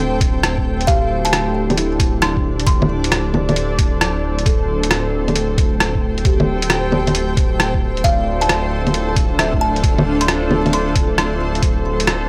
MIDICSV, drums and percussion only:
0, 0, Header, 1, 2, 480
1, 0, Start_track
1, 0, Key_signature, -1, "minor"
1, 0, Tempo, 447761
1, 940, Time_signature, 4, 2, 24, 8
1, 13174, End_track
2, 0, Start_track
2, 0, Title_t, "Drums"
2, 222, Note_on_c, 9, 36, 104
2, 225, Note_on_c, 9, 42, 55
2, 329, Note_off_c, 9, 36, 0
2, 333, Note_off_c, 9, 42, 0
2, 465, Note_on_c, 9, 37, 100
2, 465, Note_on_c, 9, 42, 57
2, 573, Note_off_c, 9, 37, 0
2, 573, Note_off_c, 9, 42, 0
2, 621, Note_on_c, 9, 36, 60
2, 728, Note_off_c, 9, 36, 0
2, 865, Note_on_c, 9, 42, 33
2, 941, Note_on_c, 9, 36, 120
2, 944, Note_off_c, 9, 42, 0
2, 944, Note_on_c, 9, 42, 56
2, 1048, Note_off_c, 9, 36, 0
2, 1051, Note_off_c, 9, 42, 0
2, 1343, Note_on_c, 9, 42, 60
2, 1424, Note_off_c, 9, 42, 0
2, 1424, Note_on_c, 9, 37, 109
2, 1424, Note_on_c, 9, 42, 60
2, 1531, Note_off_c, 9, 37, 0
2, 1531, Note_off_c, 9, 42, 0
2, 1823, Note_on_c, 9, 42, 31
2, 1823, Note_on_c, 9, 61, 52
2, 1903, Note_off_c, 9, 42, 0
2, 1903, Note_on_c, 9, 42, 62
2, 1930, Note_off_c, 9, 61, 0
2, 2010, Note_off_c, 9, 42, 0
2, 2139, Note_on_c, 9, 36, 102
2, 2142, Note_on_c, 9, 42, 62
2, 2247, Note_off_c, 9, 36, 0
2, 2249, Note_off_c, 9, 42, 0
2, 2381, Note_on_c, 9, 37, 102
2, 2381, Note_on_c, 9, 42, 56
2, 2488, Note_off_c, 9, 37, 0
2, 2488, Note_off_c, 9, 42, 0
2, 2539, Note_on_c, 9, 36, 61
2, 2646, Note_off_c, 9, 36, 0
2, 2782, Note_on_c, 9, 42, 34
2, 2858, Note_on_c, 9, 36, 127
2, 2861, Note_off_c, 9, 42, 0
2, 2861, Note_on_c, 9, 42, 58
2, 2966, Note_off_c, 9, 36, 0
2, 2968, Note_off_c, 9, 42, 0
2, 3022, Note_on_c, 9, 61, 63
2, 3130, Note_off_c, 9, 61, 0
2, 3261, Note_on_c, 9, 42, 58
2, 3342, Note_off_c, 9, 42, 0
2, 3342, Note_on_c, 9, 37, 111
2, 3342, Note_on_c, 9, 42, 63
2, 3449, Note_off_c, 9, 37, 0
2, 3449, Note_off_c, 9, 42, 0
2, 3580, Note_on_c, 9, 61, 65
2, 3687, Note_off_c, 9, 61, 0
2, 3739, Note_on_c, 9, 42, 31
2, 3739, Note_on_c, 9, 61, 50
2, 3819, Note_off_c, 9, 42, 0
2, 3819, Note_on_c, 9, 42, 60
2, 3846, Note_off_c, 9, 61, 0
2, 3926, Note_off_c, 9, 42, 0
2, 4059, Note_on_c, 9, 36, 107
2, 4059, Note_on_c, 9, 42, 61
2, 4166, Note_off_c, 9, 36, 0
2, 4166, Note_off_c, 9, 42, 0
2, 4300, Note_on_c, 9, 37, 111
2, 4300, Note_on_c, 9, 42, 59
2, 4407, Note_off_c, 9, 37, 0
2, 4407, Note_off_c, 9, 42, 0
2, 4702, Note_on_c, 9, 42, 35
2, 4779, Note_on_c, 9, 36, 127
2, 4782, Note_off_c, 9, 42, 0
2, 4782, Note_on_c, 9, 42, 54
2, 4886, Note_off_c, 9, 36, 0
2, 4889, Note_off_c, 9, 42, 0
2, 5182, Note_on_c, 9, 42, 61
2, 5260, Note_off_c, 9, 42, 0
2, 5260, Note_on_c, 9, 37, 115
2, 5260, Note_on_c, 9, 42, 58
2, 5367, Note_off_c, 9, 37, 0
2, 5367, Note_off_c, 9, 42, 0
2, 5662, Note_on_c, 9, 42, 30
2, 5662, Note_on_c, 9, 61, 49
2, 5741, Note_off_c, 9, 42, 0
2, 5741, Note_on_c, 9, 42, 59
2, 5769, Note_off_c, 9, 61, 0
2, 5848, Note_off_c, 9, 42, 0
2, 5980, Note_on_c, 9, 36, 109
2, 5983, Note_on_c, 9, 42, 60
2, 6087, Note_off_c, 9, 36, 0
2, 6090, Note_off_c, 9, 42, 0
2, 6222, Note_on_c, 9, 37, 107
2, 6222, Note_on_c, 9, 42, 56
2, 6329, Note_off_c, 9, 37, 0
2, 6329, Note_off_c, 9, 42, 0
2, 6380, Note_on_c, 9, 36, 67
2, 6487, Note_off_c, 9, 36, 0
2, 6622, Note_on_c, 9, 42, 34
2, 6699, Note_on_c, 9, 36, 127
2, 6700, Note_off_c, 9, 42, 0
2, 6700, Note_on_c, 9, 42, 56
2, 6807, Note_off_c, 9, 36, 0
2, 6807, Note_off_c, 9, 42, 0
2, 6860, Note_on_c, 9, 61, 57
2, 6967, Note_off_c, 9, 61, 0
2, 7100, Note_on_c, 9, 42, 55
2, 7180, Note_off_c, 9, 42, 0
2, 7180, Note_on_c, 9, 37, 116
2, 7180, Note_on_c, 9, 42, 61
2, 7287, Note_off_c, 9, 37, 0
2, 7287, Note_off_c, 9, 42, 0
2, 7421, Note_on_c, 9, 61, 60
2, 7528, Note_off_c, 9, 61, 0
2, 7582, Note_on_c, 9, 42, 31
2, 7582, Note_on_c, 9, 61, 48
2, 7662, Note_off_c, 9, 42, 0
2, 7662, Note_on_c, 9, 42, 58
2, 7689, Note_off_c, 9, 61, 0
2, 7769, Note_off_c, 9, 42, 0
2, 7901, Note_on_c, 9, 36, 112
2, 7903, Note_on_c, 9, 42, 57
2, 8008, Note_off_c, 9, 36, 0
2, 8011, Note_off_c, 9, 42, 0
2, 8144, Note_on_c, 9, 37, 106
2, 8144, Note_on_c, 9, 42, 54
2, 8251, Note_off_c, 9, 37, 0
2, 8251, Note_off_c, 9, 42, 0
2, 8301, Note_on_c, 9, 36, 69
2, 8408, Note_off_c, 9, 36, 0
2, 8545, Note_on_c, 9, 42, 31
2, 8621, Note_on_c, 9, 36, 120
2, 8624, Note_off_c, 9, 42, 0
2, 8624, Note_on_c, 9, 42, 54
2, 8729, Note_off_c, 9, 36, 0
2, 8731, Note_off_c, 9, 42, 0
2, 9024, Note_on_c, 9, 42, 52
2, 9105, Note_off_c, 9, 42, 0
2, 9105, Note_on_c, 9, 37, 106
2, 9105, Note_on_c, 9, 42, 54
2, 9212, Note_off_c, 9, 37, 0
2, 9212, Note_off_c, 9, 42, 0
2, 9505, Note_on_c, 9, 42, 28
2, 9505, Note_on_c, 9, 61, 47
2, 9584, Note_off_c, 9, 42, 0
2, 9584, Note_on_c, 9, 42, 55
2, 9612, Note_off_c, 9, 61, 0
2, 9692, Note_off_c, 9, 42, 0
2, 9822, Note_on_c, 9, 36, 104
2, 9824, Note_on_c, 9, 42, 54
2, 9929, Note_off_c, 9, 36, 0
2, 9931, Note_off_c, 9, 42, 0
2, 10065, Note_on_c, 9, 37, 106
2, 10065, Note_on_c, 9, 42, 56
2, 10173, Note_off_c, 9, 37, 0
2, 10173, Note_off_c, 9, 42, 0
2, 10222, Note_on_c, 9, 36, 64
2, 10330, Note_off_c, 9, 36, 0
2, 10466, Note_on_c, 9, 42, 30
2, 10543, Note_on_c, 9, 36, 120
2, 10545, Note_off_c, 9, 42, 0
2, 10545, Note_on_c, 9, 42, 52
2, 10650, Note_off_c, 9, 36, 0
2, 10652, Note_off_c, 9, 42, 0
2, 10703, Note_on_c, 9, 61, 61
2, 10811, Note_off_c, 9, 61, 0
2, 10944, Note_on_c, 9, 42, 52
2, 11024, Note_off_c, 9, 42, 0
2, 11024, Note_on_c, 9, 37, 107
2, 11024, Note_on_c, 9, 42, 55
2, 11131, Note_off_c, 9, 37, 0
2, 11131, Note_off_c, 9, 42, 0
2, 11264, Note_on_c, 9, 61, 63
2, 11371, Note_off_c, 9, 61, 0
2, 11425, Note_on_c, 9, 42, 29
2, 11425, Note_on_c, 9, 61, 50
2, 11504, Note_off_c, 9, 42, 0
2, 11504, Note_on_c, 9, 42, 57
2, 11533, Note_off_c, 9, 61, 0
2, 11611, Note_off_c, 9, 42, 0
2, 11743, Note_on_c, 9, 36, 99
2, 11745, Note_on_c, 9, 42, 55
2, 11850, Note_off_c, 9, 36, 0
2, 11852, Note_off_c, 9, 42, 0
2, 11986, Note_on_c, 9, 37, 101
2, 11986, Note_on_c, 9, 42, 56
2, 12093, Note_off_c, 9, 37, 0
2, 12093, Note_off_c, 9, 42, 0
2, 12384, Note_on_c, 9, 42, 29
2, 12462, Note_on_c, 9, 36, 115
2, 12463, Note_off_c, 9, 42, 0
2, 12463, Note_on_c, 9, 42, 55
2, 12569, Note_off_c, 9, 36, 0
2, 12570, Note_off_c, 9, 42, 0
2, 12863, Note_on_c, 9, 42, 53
2, 12943, Note_off_c, 9, 42, 0
2, 12943, Note_on_c, 9, 37, 102
2, 12943, Note_on_c, 9, 42, 57
2, 13051, Note_off_c, 9, 37, 0
2, 13051, Note_off_c, 9, 42, 0
2, 13174, End_track
0, 0, End_of_file